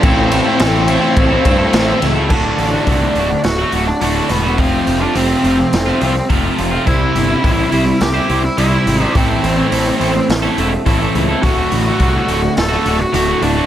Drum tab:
CC |--------|x-------|--------|--------|
RD |xxxxxxxx|--------|--------|--------|
HH |--------|-ooooooo|oooooooo|oooooooo|
SD |--o---oo|----o---|----o---|----o---|
BD |o---oo--|o-o-----|o-----o-|o-o-----|

CC |--------|--------|
RD |--------|--------|
HH |oooooooo|oooooooo|
SD |----o---|----o---|
BD |o-----o-|o-o-----|